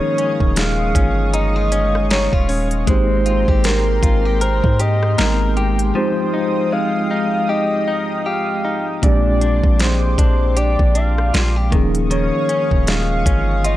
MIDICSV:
0, 0, Header, 1, 7, 480
1, 0, Start_track
1, 0, Tempo, 769231
1, 1795, Time_signature, 4, 2, 24, 8
1, 8591, End_track
2, 0, Start_track
2, 0, Title_t, "Analog synth pad"
2, 0, Program_c, 0, 89
2, 0, Note_on_c, 0, 56, 80
2, 0, Note_on_c, 0, 77, 73
2, 0, Note_on_c, 0, 85, 74
2, 0, Note_on_c, 0, 87, 88
2, 1772, Note_off_c, 0, 77, 0
2, 1772, Note_off_c, 0, 85, 0
2, 1772, Note_off_c, 0, 87, 0
2, 1793, Note_on_c, 0, 82, 72
2, 1793, Note_on_c, 0, 84, 91
2, 1794, Note_on_c, 0, 79, 72
2, 3695, Note_off_c, 0, 82, 0
2, 3695, Note_off_c, 0, 84, 0
2, 3713, Note_on_c, 0, 77, 76
2, 3713, Note_on_c, 0, 87, 91
2, 5614, Note_off_c, 0, 87, 0
2, 5615, Note_off_c, 0, 77, 0
2, 5636, Note_on_c, 0, 84, 69
2, 5636, Note_on_c, 0, 86, 93
2, 7289, Note_off_c, 0, 79, 0
2, 7298, Note_off_c, 0, 84, 0
2, 7298, Note_off_c, 0, 86, 0
2, 7314, Note_on_c, 0, 85, 74
2, 7315, Note_on_c, 0, 77, 73
2, 7315, Note_on_c, 0, 87, 88
2, 8591, Note_off_c, 0, 56, 0
2, 8591, Note_off_c, 0, 77, 0
2, 8591, Note_off_c, 0, 85, 0
2, 8591, Note_off_c, 0, 87, 0
2, 8591, End_track
3, 0, Start_track
3, 0, Title_t, "Soft synth lead"
3, 0, Program_c, 1, 80
3, 0, Note_on_c, 1, 73, 115
3, 362, Note_on_c, 1, 77, 118
3, 371, Note_off_c, 1, 73, 0
3, 837, Note_off_c, 1, 77, 0
3, 840, Note_on_c, 1, 75, 108
3, 1292, Note_off_c, 1, 75, 0
3, 1320, Note_on_c, 1, 73, 109
3, 1671, Note_off_c, 1, 73, 0
3, 1800, Note_on_c, 1, 72, 111
3, 2279, Note_on_c, 1, 70, 98
3, 2289, Note_off_c, 1, 72, 0
3, 2759, Note_on_c, 1, 72, 94
3, 2768, Note_off_c, 1, 70, 0
3, 3000, Note_on_c, 1, 75, 96
3, 3010, Note_off_c, 1, 72, 0
3, 3477, Note_off_c, 1, 75, 0
3, 3719, Note_on_c, 1, 72, 116
3, 4197, Note_on_c, 1, 77, 115
3, 4207, Note_off_c, 1, 72, 0
3, 4676, Note_on_c, 1, 75, 107
3, 4686, Note_off_c, 1, 77, 0
3, 5157, Note_on_c, 1, 77, 116
3, 5166, Note_off_c, 1, 75, 0
3, 5535, Note_off_c, 1, 77, 0
3, 5636, Note_on_c, 1, 74, 109
3, 6119, Note_on_c, 1, 72, 97
3, 6128, Note_off_c, 1, 74, 0
3, 6599, Note_on_c, 1, 74, 97
3, 6608, Note_off_c, 1, 72, 0
3, 6839, Note_on_c, 1, 77, 97
3, 6848, Note_off_c, 1, 74, 0
3, 7317, Note_off_c, 1, 77, 0
3, 7560, Note_on_c, 1, 73, 119
3, 8040, Note_on_c, 1, 77, 115
3, 8049, Note_off_c, 1, 73, 0
3, 8519, Note_on_c, 1, 75, 108
3, 8529, Note_off_c, 1, 77, 0
3, 8591, Note_off_c, 1, 75, 0
3, 8591, End_track
4, 0, Start_track
4, 0, Title_t, "Clean electric guitar"
4, 0, Program_c, 2, 27
4, 0, Note_on_c, 2, 51, 86
4, 0, Note_on_c, 2, 56, 60
4, 114, Note_on_c, 2, 61, 60
4, 351, Note_off_c, 2, 56, 0
4, 353, Note_on_c, 2, 56, 67
4, 586, Note_off_c, 2, 61, 0
4, 593, Note_on_c, 2, 61, 59
4, 833, Note_on_c, 2, 63, 71
4, 972, Note_off_c, 2, 63, 0
4, 972, Note_on_c, 2, 65, 61
4, 1066, Note_off_c, 2, 61, 0
4, 1073, Note_on_c, 2, 61, 62
4, 1311, Note_off_c, 2, 65, 0
4, 1314, Note_on_c, 2, 63, 69
4, 1453, Note_off_c, 2, 63, 0
4, 1453, Note_on_c, 2, 65, 60
4, 1547, Note_off_c, 2, 61, 0
4, 1554, Note_on_c, 2, 61, 59
4, 1791, Note_off_c, 2, 56, 0
4, 1794, Note_on_c, 2, 56, 88
4, 1850, Note_off_c, 2, 61, 0
4, 1850, Note_off_c, 2, 65, 0
4, 2034, Note_on_c, 2, 65, 60
4, 2053, Note_off_c, 2, 51, 0
4, 2173, Note_off_c, 2, 65, 0
4, 2173, Note_on_c, 2, 67, 55
4, 2274, Note_on_c, 2, 60, 61
4, 2512, Note_off_c, 2, 67, 0
4, 2514, Note_on_c, 2, 65, 62
4, 2654, Note_off_c, 2, 65, 0
4, 2654, Note_on_c, 2, 67, 53
4, 2755, Note_on_c, 2, 70, 70
4, 2987, Note_off_c, 2, 67, 0
4, 2994, Note_on_c, 2, 67, 60
4, 3226, Note_off_c, 2, 70, 0
4, 3234, Note_on_c, 2, 70, 69
4, 3472, Note_off_c, 2, 67, 0
4, 3474, Note_on_c, 2, 67, 64
4, 3714, Note_on_c, 2, 53, 86
4, 3770, Note_off_c, 2, 70, 0
4, 3952, Note_off_c, 2, 60, 0
4, 3954, Note_on_c, 2, 63, 59
4, 3978, Note_off_c, 2, 56, 0
4, 4195, Note_on_c, 2, 56, 64
4, 4214, Note_off_c, 2, 67, 0
4, 4427, Note_off_c, 2, 63, 0
4, 4435, Note_on_c, 2, 63, 60
4, 4675, Note_on_c, 2, 67, 72
4, 4908, Note_off_c, 2, 63, 0
4, 4915, Note_on_c, 2, 63, 62
4, 5152, Note_off_c, 2, 67, 0
4, 5154, Note_on_c, 2, 67, 71
4, 5387, Note_off_c, 2, 63, 0
4, 5395, Note_on_c, 2, 63, 59
4, 5635, Note_on_c, 2, 46, 85
4, 5690, Note_off_c, 2, 63, 0
4, 5875, Note_on_c, 2, 62, 60
4, 5894, Note_off_c, 2, 56, 0
4, 5898, Note_off_c, 2, 53, 0
4, 6115, Note_on_c, 2, 56, 65
4, 6133, Note_off_c, 2, 67, 0
4, 6347, Note_off_c, 2, 62, 0
4, 6355, Note_on_c, 2, 62, 62
4, 6594, Note_on_c, 2, 67, 69
4, 6827, Note_off_c, 2, 62, 0
4, 6835, Note_on_c, 2, 62, 61
4, 7072, Note_off_c, 2, 67, 0
4, 7075, Note_on_c, 2, 65, 71
4, 7214, Note_off_c, 2, 65, 0
4, 7214, Note_on_c, 2, 67, 61
4, 7314, Note_on_c, 2, 51, 75
4, 7370, Note_off_c, 2, 46, 0
4, 7370, Note_off_c, 2, 62, 0
4, 7370, Note_off_c, 2, 67, 0
4, 7552, Note_off_c, 2, 51, 0
4, 7554, Note_on_c, 2, 51, 85
4, 7794, Note_on_c, 2, 61, 62
4, 8031, Note_off_c, 2, 56, 0
4, 8034, Note_on_c, 2, 56, 64
4, 8266, Note_off_c, 2, 61, 0
4, 8274, Note_on_c, 2, 61, 59
4, 8514, Note_on_c, 2, 65, 72
4, 8591, Note_off_c, 2, 51, 0
4, 8591, Note_off_c, 2, 56, 0
4, 8591, Note_off_c, 2, 61, 0
4, 8591, Note_off_c, 2, 65, 0
4, 8591, End_track
5, 0, Start_track
5, 0, Title_t, "Tine electric piano"
5, 0, Program_c, 3, 4
5, 0, Control_c, 3, 64, 127
5, 0, Note_on_c, 3, 53, 65
5, 0, Note_on_c, 3, 58, 65
5, 0, Note_on_c, 3, 61, 65
5, 0, Note_on_c, 3, 63, 63
5, 0, Note_on_c, 3, 68, 75
5, 1525, Note_off_c, 3, 53, 0
5, 1528, Note_off_c, 3, 58, 0
5, 1531, Note_off_c, 3, 61, 0
5, 1534, Note_off_c, 3, 63, 0
5, 1538, Note_off_c, 3, 68, 0
5, 1785, Note_on_c, 3, 56, 68
5, 1791, Note_on_c, 3, 58, 60
5, 1798, Note_on_c, 3, 60, 63
5, 1804, Control_c, 3, 64, 0
5, 1804, Note_on_c, 3, 63, 63
5, 1811, Note_on_c, 3, 67, 73
5, 1930, Control_c, 3, 64, 127
5, 3204, Note_off_c, 3, 56, 0
5, 3208, Note_off_c, 3, 58, 0
5, 3211, Note_off_c, 3, 60, 0
5, 3214, Note_off_c, 3, 63, 0
5, 3217, Note_off_c, 3, 67, 0
5, 3231, Note_on_c, 3, 56, 51
5, 3234, Note_on_c, 3, 58, 51
5, 3238, Note_on_c, 3, 59, 38
5, 3241, Note_on_c, 3, 63, 46
5, 3244, Note_on_c, 3, 70, 59
5, 3278, Note_on_c, 3, 60, 49
5, 3283, Note_off_c, 3, 59, 0
5, 3704, Note_off_c, 3, 56, 0
5, 3705, Note_on_c, 3, 53, 69
5, 3711, Note_off_c, 3, 60, 0
5, 3712, Note_on_c, 3, 56, 58
5, 3714, Note_off_c, 3, 58, 0
5, 3718, Note_off_c, 3, 63, 0
5, 3718, Note_on_c, 3, 60, 61
5, 3719, Note_off_c, 3, 70, 0
5, 3722, Control_c, 3, 64, 0
5, 3724, Note_on_c, 3, 63, 64
5, 3730, Note_on_c, 3, 67, 70
5, 3817, Control_c, 3, 64, 127
5, 5605, Note_off_c, 3, 53, 0
5, 5608, Note_off_c, 3, 56, 0
5, 5611, Note_off_c, 3, 60, 0
5, 5614, Note_off_c, 3, 63, 0
5, 5617, Note_off_c, 3, 67, 0
5, 5626, Note_on_c, 3, 53, 66
5, 5631, Note_on_c, 3, 56, 63
5, 5638, Note_on_c, 3, 60, 61
5, 5642, Control_c, 3, 64, 0
5, 5645, Note_on_c, 3, 62, 57
5, 5651, Note_on_c, 3, 67, 70
5, 5748, Control_c, 3, 64, 127
5, 7285, Note_off_c, 3, 53, 0
5, 7288, Note_off_c, 3, 56, 0
5, 7291, Note_off_c, 3, 60, 0
5, 7295, Note_off_c, 3, 62, 0
5, 7298, Note_off_c, 3, 67, 0
5, 7307, Note_on_c, 3, 53, 67
5, 7313, Note_on_c, 3, 58, 63
5, 7320, Note_on_c, 3, 61, 66
5, 7322, Control_c, 3, 64, 0
5, 7326, Note_on_c, 3, 63, 65
5, 7333, Note_on_c, 3, 68, 76
5, 7438, Control_c, 3, 64, 127
5, 8591, Note_off_c, 3, 53, 0
5, 8591, Note_off_c, 3, 58, 0
5, 8591, Note_off_c, 3, 61, 0
5, 8591, Note_off_c, 3, 63, 0
5, 8591, Note_off_c, 3, 68, 0
5, 8591, End_track
6, 0, Start_track
6, 0, Title_t, "808-style bass"
6, 0, Program_c, 4, 38
6, 253, Note_on_c, 4, 27, 105
6, 581, Note_off_c, 4, 27, 0
6, 594, Note_on_c, 4, 31, 111
6, 1429, Note_off_c, 4, 31, 0
6, 1453, Note_on_c, 4, 27, 100
6, 1780, Note_off_c, 4, 27, 0
6, 1795, Note_on_c, 4, 32, 113
6, 2159, Note_off_c, 4, 32, 0
6, 2173, Note_on_c, 4, 32, 112
6, 2500, Note_off_c, 4, 32, 0
6, 2514, Note_on_c, 4, 32, 109
6, 2878, Note_off_c, 4, 32, 0
6, 2895, Note_on_c, 4, 44, 105
6, 3221, Note_off_c, 4, 44, 0
6, 3237, Note_on_c, 4, 32, 105
6, 3697, Note_off_c, 4, 32, 0
6, 5636, Note_on_c, 4, 34, 110
6, 5999, Note_off_c, 4, 34, 0
6, 6014, Note_on_c, 4, 34, 105
6, 6341, Note_off_c, 4, 34, 0
6, 6355, Note_on_c, 4, 34, 109
6, 6719, Note_off_c, 4, 34, 0
6, 6736, Note_on_c, 4, 34, 103
6, 7062, Note_off_c, 4, 34, 0
6, 7077, Note_on_c, 4, 34, 108
6, 7306, Note_off_c, 4, 34, 0
6, 7316, Note_on_c, 4, 27, 109
6, 7679, Note_off_c, 4, 27, 0
6, 7934, Note_on_c, 4, 27, 106
6, 8261, Note_off_c, 4, 27, 0
6, 8275, Note_on_c, 4, 31, 109
6, 8591, Note_off_c, 4, 31, 0
6, 8591, End_track
7, 0, Start_track
7, 0, Title_t, "Drums"
7, 114, Note_on_c, 9, 42, 54
7, 176, Note_off_c, 9, 42, 0
7, 252, Note_on_c, 9, 36, 86
7, 314, Note_off_c, 9, 36, 0
7, 352, Note_on_c, 9, 42, 86
7, 357, Note_on_c, 9, 38, 111
7, 414, Note_off_c, 9, 42, 0
7, 420, Note_off_c, 9, 38, 0
7, 593, Note_on_c, 9, 36, 102
7, 596, Note_on_c, 9, 42, 83
7, 655, Note_off_c, 9, 36, 0
7, 659, Note_off_c, 9, 42, 0
7, 833, Note_on_c, 9, 42, 80
7, 896, Note_off_c, 9, 42, 0
7, 1072, Note_on_c, 9, 42, 70
7, 1135, Note_off_c, 9, 42, 0
7, 1217, Note_on_c, 9, 37, 70
7, 1280, Note_off_c, 9, 37, 0
7, 1314, Note_on_c, 9, 42, 64
7, 1318, Note_on_c, 9, 38, 113
7, 1376, Note_off_c, 9, 42, 0
7, 1380, Note_off_c, 9, 38, 0
7, 1452, Note_on_c, 9, 36, 90
7, 1514, Note_off_c, 9, 36, 0
7, 1553, Note_on_c, 9, 42, 34
7, 1555, Note_on_c, 9, 46, 64
7, 1615, Note_off_c, 9, 42, 0
7, 1618, Note_off_c, 9, 46, 0
7, 1691, Note_on_c, 9, 42, 61
7, 1753, Note_off_c, 9, 42, 0
7, 1793, Note_on_c, 9, 36, 119
7, 1793, Note_on_c, 9, 42, 74
7, 1855, Note_off_c, 9, 42, 0
7, 1856, Note_off_c, 9, 36, 0
7, 2033, Note_on_c, 9, 42, 52
7, 2095, Note_off_c, 9, 42, 0
7, 2172, Note_on_c, 9, 36, 92
7, 2234, Note_off_c, 9, 36, 0
7, 2271, Note_on_c, 9, 42, 80
7, 2277, Note_on_c, 9, 38, 110
7, 2334, Note_off_c, 9, 42, 0
7, 2340, Note_off_c, 9, 38, 0
7, 2513, Note_on_c, 9, 36, 104
7, 2516, Note_on_c, 9, 42, 81
7, 2575, Note_off_c, 9, 36, 0
7, 2578, Note_off_c, 9, 42, 0
7, 2753, Note_on_c, 9, 42, 77
7, 2815, Note_off_c, 9, 42, 0
7, 2893, Note_on_c, 9, 36, 90
7, 2956, Note_off_c, 9, 36, 0
7, 2992, Note_on_c, 9, 42, 73
7, 3054, Note_off_c, 9, 42, 0
7, 3136, Note_on_c, 9, 37, 73
7, 3199, Note_off_c, 9, 37, 0
7, 3234, Note_on_c, 9, 42, 66
7, 3238, Note_on_c, 9, 38, 115
7, 3296, Note_off_c, 9, 42, 0
7, 3300, Note_off_c, 9, 38, 0
7, 3474, Note_on_c, 9, 42, 35
7, 3536, Note_off_c, 9, 42, 0
7, 3613, Note_on_c, 9, 42, 60
7, 3676, Note_off_c, 9, 42, 0
7, 5634, Note_on_c, 9, 36, 109
7, 5634, Note_on_c, 9, 42, 70
7, 5696, Note_off_c, 9, 42, 0
7, 5697, Note_off_c, 9, 36, 0
7, 5874, Note_on_c, 9, 42, 52
7, 5937, Note_off_c, 9, 42, 0
7, 6012, Note_on_c, 9, 36, 92
7, 6075, Note_off_c, 9, 36, 0
7, 6112, Note_on_c, 9, 42, 80
7, 6118, Note_on_c, 9, 38, 112
7, 6174, Note_off_c, 9, 42, 0
7, 6180, Note_off_c, 9, 38, 0
7, 6353, Note_on_c, 9, 36, 101
7, 6357, Note_on_c, 9, 42, 84
7, 6416, Note_off_c, 9, 36, 0
7, 6419, Note_off_c, 9, 42, 0
7, 6593, Note_on_c, 9, 42, 78
7, 6656, Note_off_c, 9, 42, 0
7, 6735, Note_on_c, 9, 36, 89
7, 6797, Note_off_c, 9, 36, 0
7, 6833, Note_on_c, 9, 42, 69
7, 6896, Note_off_c, 9, 42, 0
7, 6978, Note_on_c, 9, 37, 69
7, 7041, Note_off_c, 9, 37, 0
7, 7077, Note_on_c, 9, 42, 66
7, 7080, Note_on_c, 9, 38, 112
7, 7139, Note_off_c, 9, 42, 0
7, 7143, Note_off_c, 9, 38, 0
7, 7315, Note_on_c, 9, 36, 111
7, 7315, Note_on_c, 9, 42, 35
7, 7377, Note_off_c, 9, 36, 0
7, 7378, Note_off_c, 9, 42, 0
7, 7455, Note_on_c, 9, 42, 58
7, 7517, Note_off_c, 9, 42, 0
7, 7556, Note_on_c, 9, 42, 70
7, 7618, Note_off_c, 9, 42, 0
7, 7794, Note_on_c, 9, 42, 55
7, 7857, Note_off_c, 9, 42, 0
7, 7933, Note_on_c, 9, 36, 89
7, 7995, Note_off_c, 9, 36, 0
7, 8033, Note_on_c, 9, 42, 79
7, 8039, Note_on_c, 9, 38, 105
7, 8095, Note_off_c, 9, 42, 0
7, 8101, Note_off_c, 9, 38, 0
7, 8274, Note_on_c, 9, 36, 99
7, 8277, Note_on_c, 9, 42, 86
7, 8336, Note_off_c, 9, 36, 0
7, 8340, Note_off_c, 9, 42, 0
7, 8514, Note_on_c, 9, 42, 78
7, 8577, Note_off_c, 9, 42, 0
7, 8591, End_track
0, 0, End_of_file